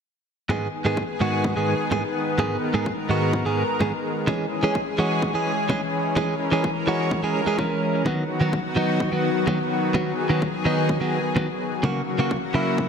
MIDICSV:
0, 0, Header, 1, 4, 480
1, 0, Start_track
1, 0, Key_signature, 5, "minor"
1, 0, Tempo, 472441
1, 507, Time_signature, 4, 2, 24, 8
1, 13093, End_track
2, 0, Start_track
2, 0, Title_t, "Analog synth pad"
2, 0, Program_c, 0, 89
2, 507, Note_on_c, 0, 51, 79
2, 508, Note_on_c, 0, 56, 73
2, 508, Note_on_c, 0, 59, 69
2, 508, Note_on_c, 0, 68, 86
2, 2409, Note_off_c, 0, 68, 0
2, 2427, Note_on_c, 0, 70, 85
2, 4309, Note_off_c, 0, 51, 0
2, 4309, Note_off_c, 0, 59, 0
2, 4328, Note_off_c, 0, 70, 0
2, 4348, Note_on_c, 0, 61, 73
2, 4348, Note_on_c, 0, 68, 87
2, 4349, Note_on_c, 0, 52, 82
2, 6249, Note_off_c, 0, 68, 0
2, 6267, Note_on_c, 0, 70, 86
2, 8147, Note_off_c, 0, 56, 0
2, 8149, Note_off_c, 0, 61, 0
2, 8150, Note_off_c, 0, 52, 0
2, 8168, Note_off_c, 0, 70, 0
2, 8187, Note_on_c, 0, 54, 72
2, 8188, Note_on_c, 0, 51, 78
2, 8188, Note_on_c, 0, 59, 72
2, 8188, Note_on_c, 0, 66, 85
2, 10088, Note_off_c, 0, 66, 0
2, 10108, Note_on_c, 0, 68, 85
2, 11989, Note_off_c, 0, 51, 0
2, 11989, Note_off_c, 0, 54, 0
2, 11989, Note_off_c, 0, 59, 0
2, 12008, Note_off_c, 0, 68, 0
2, 12028, Note_on_c, 0, 54, 71
2, 12028, Note_on_c, 0, 58, 69
2, 12029, Note_on_c, 0, 49, 78
2, 12030, Note_on_c, 0, 66, 85
2, 13093, Note_off_c, 0, 49, 0
2, 13093, Note_off_c, 0, 54, 0
2, 13093, Note_off_c, 0, 58, 0
2, 13093, Note_off_c, 0, 66, 0
2, 13093, End_track
3, 0, Start_track
3, 0, Title_t, "Clean electric guitar"
3, 0, Program_c, 1, 27
3, 500, Note_on_c, 1, 44, 89
3, 506, Note_on_c, 1, 56, 82
3, 508, Note_on_c, 1, 51, 68
3, 514, Note_on_c, 1, 68, 98
3, 515, Note_on_c, 1, 59, 71
3, 677, Note_off_c, 1, 44, 0
3, 679, Note_off_c, 1, 51, 0
3, 680, Note_off_c, 1, 56, 0
3, 681, Note_off_c, 1, 59, 0
3, 683, Note_off_c, 1, 68, 0
3, 860, Note_on_c, 1, 44, 82
3, 866, Note_on_c, 1, 56, 74
3, 868, Note_on_c, 1, 51, 67
3, 874, Note_on_c, 1, 68, 89
3, 875, Note_on_c, 1, 59, 66
3, 1037, Note_off_c, 1, 44, 0
3, 1038, Note_off_c, 1, 51, 0
3, 1040, Note_off_c, 1, 56, 0
3, 1041, Note_off_c, 1, 59, 0
3, 1043, Note_off_c, 1, 68, 0
3, 1222, Note_on_c, 1, 44, 84
3, 1227, Note_on_c, 1, 56, 82
3, 1228, Note_on_c, 1, 51, 76
3, 1234, Note_on_c, 1, 59, 70
3, 1235, Note_on_c, 1, 66, 97
3, 1556, Note_off_c, 1, 44, 0
3, 1557, Note_off_c, 1, 51, 0
3, 1559, Note_off_c, 1, 56, 0
3, 1560, Note_off_c, 1, 59, 0
3, 1562, Note_off_c, 1, 66, 0
3, 1581, Note_on_c, 1, 44, 83
3, 1587, Note_on_c, 1, 56, 70
3, 1589, Note_on_c, 1, 51, 68
3, 1594, Note_on_c, 1, 68, 85
3, 1595, Note_on_c, 1, 59, 67
3, 1757, Note_off_c, 1, 44, 0
3, 1758, Note_off_c, 1, 51, 0
3, 1760, Note_off_c, 1, 56, 0
3, 1762, Note_off_c, 1, 59, 0
3, 1763, Note_off_c, 1, 68, 0
3, 1940, Note_on_c, 1, 44, 79
3, 1946, Note_on_c, 1, 56, 67
3, 1947, Note_on_c, 1, 51, 68
3, 1953, Note_on_c, 1, 68, 89
3, 1954, Note_on_c, 1, 59, 65
3, 2052, Note_off_c, 1, 44, 0
3, 2053, Note_off_c, 1, 51, 0
3, 2055, Note_off_c, 1, 56, 0
3, 2057, Note_off_c, 1, 59, 0
3, 2058, Note_off_c, 1, 68, 0
3, 2420, Note_on_c, 1, 44, 85
3, 2427, Note_on_c, 1, 56, 86
3, 2428, Note_on_c, 1, 51, 73
3, 2434, Note_on_c, 1, 59, 80
3, 2434, Note_on_c, 1, 68, 95
3, 2597, Note_off_c, 1, 44, 0
3, 2598, Note_off_c, 1, 51, 0
3, 2600, Note_off_c, 1, 56, 0
3, 2601, Note_off_c, 1, 59, 0
3, 2603, Note_off_c, 1, 68, 0
3, 2781, Note_on_c, 1, 44, 87
3, 2786, Note_on_c, 1, 56, 75
3, 2787, Note_on_c, 1, 51, 65
3, 2794, Note_on_c, 1, 68, 88
3, 2796, Note_on_c, 1, 59, 61
3, 2957, Note_off_c, 1, 44, 0
3, 2958, Note_off_c, 1, 51, 0
3, 2960, Note_off_c, 1, 56, 0
3, 2962, Note_off_c, 1, 59, 0
3, 2963, Note_off_c, 1, 68, 0
3, 3140, Note_on_c, 1, 44, 94
3, 3146, Note_on_c, 1, 56, 76
3, 3151, Note_on_c, 1, 51, 63
3, 3155, Note_on_c, 1, 66, 97
3, 3156, Note_on_c, 1, 59, 71
3, 3476, Note_off_c, 1, 44, 0
3, 3478, Note_off_c, 1, 51, 0
3, 3479, Note_off_c, 1, 56, 0
3, 3481, Note_off_c, 1, 59, 0
3, 3483, Note_off_c, 1, 66, 0
3, 3502, Note_on_c, 1, 44, 78
3, 3509, Note_on_c, 1, 56, 70
3, 3511, Note_on_c, 1, 51, 61
3, 3516, Note_on_c, 1, 68, 86
3, 3518, Note_on_c, 1, 59, 60
3, 3678, Note_off_c, 1, 44, 0
3, 3679, Note_off_c, 1, 51, 0
3, 3681, Note_off_c, 1, 56, 0
3, 3683, Note_off_c, 1, 59, 0
3, 3684, Note_off_c, 1, 68, 0
3, 3863, Note_on_c, 1, 44, 85
3, 3868, Note_on_c, 1, 56, 77
3, 3870, Note_on_c, 1, 51, 71
3, 3875, Note_on_c, 1, 59, 66
3, 3876, Note_on_c, 1, 68, 93
3, 3973, Note_off_c, 1, 44, 0
3, 3975, Note_off_c, 1, 51, 0
3, 3976, Note_off_c, 1, 56, 0
3, 3977, Note_off_c, 1, 59, 0
3, 3979, Note_off_c, 1, 68, 0
3, 4342, Note_on_c, 1, 52, 94
3, 4351, Note_on_c, 1, 56, 77
3, 4351, Note_on_c, 1, 61, 90
3, 4358, Note_on_c, 1, 68, 89
3, 4518, Note_off_c, 1, 52, 0
3, 4520, Note_off_c, 1, 56, 0
3, 4522, Note_off_c, 1, 61, 0
3, 4524, Note_off_c, 1, 68, 0
3, 4701, Note_on_c, 1, 52, 80
3, 4710, Note_on_c, 1, 56, 68
3, 4710, Note_on_c, 1, 61, 76
3, 4714, Note_on_c, 1, 68, 92
3, 4877, Note_off_c, 1, 52, 0
3, 4879, Note_off_c, 1, 56, 0
3, 4881, Note_off_c, 1, 61, 0
3, 4883, Note_off_c, 1, 68, 0
3, 5063, Note_on_c, 1, 52, 91
3, 5066, Note_on_c, 1, 56, 87
3, 5075, Note_on_c, 1, 61, 70
3, 5075, Note_on_c, 1, 66, 96
3, 5396, Note_off_c, 1, 52, 0
3, 5398, Note_off_c, 1, 56, 0
3, 5400, Note_off_c, 1, 61, 0
3, 5402, Note_off_c, 1, 66, 0
3, 5423, Note_on_c, 1, 52, 81
3, 5426, Note_on_c, 1, 56, 76
3, 5434, Note_on_c, 1, 61, 70
3, 5435, Note_on_c, 1, 68, 90
3, 5597, Note_off_c, 1, 52, 0
3, 5599, Note_off_c, 1, 56, 0
3, 5601, Note_off_c, 1, 61, 0
3, 5604, Note_off_c, 1, 68, 0
3, 5781, Note_on_c, 1, 52, 83
3, 5789, Note_on_c, 1, 56, 73
3, 5789, Note_on_c, 1, 61, 74
3, 5797, Note_on_c, 1, 68, 83
3, 5892, Note_off_c, 1, 52, 0
3, 5894, Note_off_c, 1, 56, 0
3, 5896, Note_off_c, 1, 61, 0
3, 5898, Note_off_c, 1, 68, 0
3, 6261, Note_on_c, 1, 52, 92
3, 6266, Note_on_c, 1, 56, 83
3, 6269, Note_on_c, 1, 61, 86
3, 6276, Note_on_c, 1, 68, 91
3, 6437, Note_off_c, 1, 52, 0
3, 6439, Note_off_c, 1, 56, 0
3, 6441, Note_off_c, 1, 61, 0
3, 6443, Note_off_c, 1, 68, 0
3, 6620, Note_on_c, 1, 52, 82
3, 6629, Note_on_c, 1, 56, 66
3, 6629, Note_on_c, 1, 61, 74
3, 6634, Note_on_c, 1, 68, 87
3, 6797, Note_off_c, 1, 52, 0
3, 6798, Note_off_c, 1, 56, 0
3, 6801, Note_off_c, 1, 61, 0
3, 6803, Note_off_c, 1, 68, 0
3, 6981, Note_on_c, 1, 52, 92
3, 6985, Note_on_c, 1, 56, 80
3, 6993, Note_on_c, 1, 61, 70
3, 6994, Note_on_c, 1, 66, 98
3, 7316, Note_off_c, 1, 52, 0
3, 7318, Note_off_c, 1, 56, 0
3, 7320, Note_off_c, 1, 61, 0
3, 7322, Note_off_c, 1, 66, 0
3, 7340, Note_on_c, 1, 52, 80
3, 7344, Note_on_c, 1, 56, 74
3, 7353, Note_on_c, 1, 68, 84
3, 7354, Note_on_c, 1, 61, 61
3, 7516, Note_off_c, 1, 52, 0
3, 7519, Note_off_c, 1, 56, 0
3, 7520, Note_off_c, 1, 61, 0
3, 7522, Note_off_c, 1, 68, 0
3, 7581, Note_on_c, 1, 52, 83
3, 7584, Note_on_c, 1, 56, 79
3, 7593, Note_on_c, 1, 61, 71
3, 7594, Note_on_c, 1, 68, 95
3, 7686, Note_off_c, 1, 52, 0
3, 7688, Note_off_c, 1, 56, 0
3, 7690, Note_off_c, 1, 61, 0
3, 7693, Note_off_c, 1, 68, 0
3, 7700, Note_on_c, 1, 52, 86
3, 7704, Note_on_c, 1, 56, 79
3, 7708, Note_on_c, 1, 61, 81
3, 7715, Note_on_c, 1, 70, 80
3, 8155, Note_off_c, 1, 52, 0
3, 8157, Note_off_c, 1, 56, 0
3, 8159, Note_off_c, 1, 61, 0
3, 8161, Note_off_c, 1, 70, 0
3, 8179, Note_on_c, 1, 51, 95
3, 8187, Note_on_c, 1, 54, 74
3, 8187, Note_on_c, 1, 59, 79
3, 8196, Note_on_c, 1, 66, 91
3, 8356, Note_off_c, 1, 51, 0
3, 8358, Note_off_c, 1, 54, 0
3, 8360, Note_off_c, 1, 59, 0
3, 8362, Note_off_c, 1, 66, 0
3, 8539, Note_on_c, 1, 51, 85
3, 8548, Note_on_c, 1, 59, 74
3, 8549, Note_on_c, 1, 54, 65
3, 8552, Note_on_c, 1, 66, 92
3, 8716, Note_off_c, 1, 51, 0
3, 8718, Note_off_c, 1, 54, 0
3, 8720, Note_off_c, 1, 59, 0
3, 8722, Note_off_c, 1, 66, 0
3, 8900, Note_on_c, 1, 51, 86
3, 8903, Note_on_c, 1, 54, 94
3, 8910, Note_on_c, 1, 59, 71
3, 8912, Note_on_c, 1, 63, 100
3, 9235, Note_off_c, 1, 51, 0
3, 9237, Note_off_c, 1, 54, 0
3, 9239, Note_off_c, 1, 59, 0
3, 9241, Note_off_c, 1, 63, 0
3, 9261, Note_on_c, 1, 51, 79
3, 9264, Note_on_c, 1, 54, 70
3, 9273, Note_on_c, 1, 59, 65
3, 9273, Note_on_c, 1, 66, 90
3, 9437, Note_off_c, 1, 51, 0
3, 9439, Note_off_c, 1, 54, 0
3, 9441, Note_off_c, 1, 59, 0
3, 9442, Note_off_c, 1, 66, 0
3, 9621, Note_on_c, 1, 51, 80
3, 9624, Note_on_c, 1, 54, 82
3, 9633, Note_on_c, 1, 59, 66
3, 9634, Note_on_c, 1, 66, 88
3, 9732, Note_off_c, 1, 51, 0
3, 9734, Note_off_c, 1, 54, 0
3, 9736, Note_off_c, 1, 59, 0
3, 9738, Note_off_c, 1, 66, 0
3, 10101, Note_on_c, 1, 51, 90
3, 10106, Note_on_c, 1, 54, 86
3, 10110, Note_on_c, 1, 59, 80
3, 10114, Note_on_c, 1, 66, 98
3, 10277, Note_off_c, 1, 51, 0
3, 10279, Note_off_c, 1, 54, 0
3, 10281, Note_off_c, 1, 59, 0
3, 10283, Note_off_c, 1, 66, 0
3, 10459, Note_on_c, 1, 51, 85
3, 10469, Note_on_c, 1, 59, 74
3, 10470, Note_on_c, 1, 54, 68
3, 10474, Note_on_c, 1, 66, 92
3, 10637, Note_off_c, 1, 51, 0
3, 10638, Note_off_c, 1, 54, 0
3, 10640, Note_off_c, 1, 59, 0
3, 10643, Note_off_c, 1, 66, 0
3, 10822, Note_on_c, 1, 51, 95
3, 10825, Note_on_c, 1, 54, 88
3, 10833, Note_on_c, 1, 59, 77
3, 10834, Note_on_c, 1, 63, 94
3, 11156, Note_off_c, 1, 51, 0
3, 11158, Note_off_c, 1, 54, 0
3, 11160, Note_off_c, 1, 59, 0
3, 11162, Note_off_c, 1, 63, 0
3, 11179, Note_on_c, 1, 51, 85
3, 11187, Note_on_c, 1, 54, 69
3, 11188, Note_on_c, 1, 59, 73
3, 11192, Note_on_c, 1, 66, 88
3, 11356, Note_off_c, 1, 51, 0
3, 11358, Note_off_c, 1, 54, 0
3, 11360, Note_off_c, 1, 59, 0
3, 11362, Note_off_c, 1, 66, 0
3, 11540, Note_on_c, 1, 51, 85
3, 11549, Note_on_c, 1, 54, 70
3, 11549, Note_on_c, 1, 59, 79
3, 11557, Note_on_c, 1, 66, 75
3, 11652, Note_off_c, 1, 51, 0
3, 11654, Note_off_c, 1, 54, 0
3, 11656, Note_off_c, 1, 59, 0
3, 11658, Note_off_c, 1, 66, 0
3, 12021, Note_on_c, 1, 49, 93
3, 12029, Note_on_c, 1, 58, 81
3, 12030, Note_on_c, 1, 54, 73
3, 12037, Note_on_c, 1, 66, 87
3, 12197, Note_off_c, 1, 49, 0
3, 12199, Note_off_c, 1, 54, 0
3, 12201, Note_off_c, 1, 58, 0
3, 12203, Note_off_c, 1, 66, 0
3, 12380, Note_on_c, 1, 49, 83
3, 12387, Note_on_c, 1, 54, 67
3, 12389, Note_on_c, 1, 58, 84
3, 12396, Note_on_c, 1, 66, 85
3, 12557, Note_off_c, 1, 49, 0
3, 12559, Note_off_c, 1, 54, 0
3, 12561, Note_off_c, 1, 58, 0
3, 12563, Note_off_c, 1, 66, 0
3, 12741, Note_on_c, 1, 49, 90
3, 12743, Note_on_c, 1, 54, 83
3, 12753, Note_on_c, 1, 58, 70
3, 12753, Note_on_c, 1, 64, 104
3, 13075, Note_off_c, 1, 49, 0
3, 13077, Note_off_c, 1, 54, 0
3, 13079, Note_off_c, 1, 58, 0
3, 13081, Note_off_c, 1, 64, 0
3, 13093, End_track
4, 0, Start_track
4, 0, Title_t, "Drums"
4, 507, Note_on_c, 9, 36, 116
4, 609, Note_off_c, 9, 36, 0
4, 987, Note_on_c, 9, 36, 110
4, 1089, Note_off_c, 9, 36, 0
4, 1467, Note_on_c, 9, 36, 117
4, 1569, Note_off_c, 9, 36, 0
4, 1947, Note_on_c, 9, 36, 109
4, 2049, Note_off_c, 9, 36, 0
4, 2427, Note_on_c, 9, 36, 117
4, 2529, Note_off_c, 9, 36, 0
4, 2907, Note_on_c, 9, 36, 118
4, 3009, Note_off_c, 9, 36, 0
4, 3387, Note_on_c, 9, 36, 121
4, 3489, Note_off_c, 9, 36, 0
4, 3867, Note_on_c, 9, 36, 117
4, 3969, Note_off_c, 9, 36, 0
4, 4347, Note_on_c, 9, 36, 121
4, 4449, Note_off_c, 9, 36, 0
4, 4827, Note_on_c, 9, 36, 120
4, 4929, Note_off_c, 9, 36, 0
4, 5307, Note_on_c, 9, 36, 120
4, 5409, Note_off_c, 9, 36, 0
4, 5787, Note_on_c, 9, 36, 120
4, 5889, Note_off_c, 9, 36, 0
4, 6267, Note_on_c, 9, 36, 122
4, 6369, Note_off_c, 9, 36, 0
4, 6747, Note_on_c, 9, 36, 119
4, 6849, Note_off_c, 9, 36, 0
4, 7227, Note_on_c, 9, 36, 127
4, 7329, Note_off_c, 9, 36, 0
4, 7707, Note_on_c, 9, 36, 109
4, 7808, Note_off_c, 9, 36, 0
4, 8187, Note_on_c, 9, 36, 109
4, 8288, Note_off_c, 9, 36, 0
4, 8667, Note_on_c, 9, 36, 115
4, 8768, Note_off_c, 9, 36, 0
4, 9147, Note_on_c, 9, 36, 125
4, 9248, Note_off_c, 9, 36, 0
4, 9627, Note_on_c, 9, 36, 109
4, 9728, Note_off_c, 9, 36, 0
4, 10107, Note_on_c, 9, 36, 110
4, 10209, Note_off_c, 9, 36, 0
4, 10587, Note_on_c, 9, 36, 110
4, 10688, Note_off_c, 9, 36, 0
4, 11067, Note_on_c, 9, 36, 117
4, 11168, Note_off_c, 9, 36, 0
4, 11547, Note_on_c, 9, 36, 108
4, 11648, Note_off_c, 9, 36, 0
4, 12027, Note_on_c, 9, 36, 110
4, 12128, Note_off_c, 9, 36, 0
4, 12507, Note_on_c, 9, 36, 106
4, 12608, Note_off_c, 9, 36, 0
4, 12987, Note_on_c, 9, 36, 118
4, 13088, Note_off_c, 9, 36, 0
4, 13093, End_track
0, 0, End_of_file